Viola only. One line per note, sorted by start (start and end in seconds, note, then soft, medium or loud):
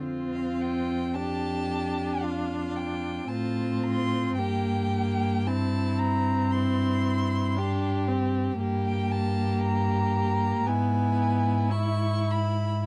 0.05 1.17 C4 soft
1.16 3.29 D4 soft
3.30 4.40 C4 medium
4.39 4.93 A#3 medium
4.94 5.49 A#3 medium
5.47 7.58 C4 medium
7.56 8.10 D4 medium
8.08 8.60 C4 medium
8.61 10.68 A#3 medium
10.66 11.72 B3 medium
11.71 12.86 E4 soft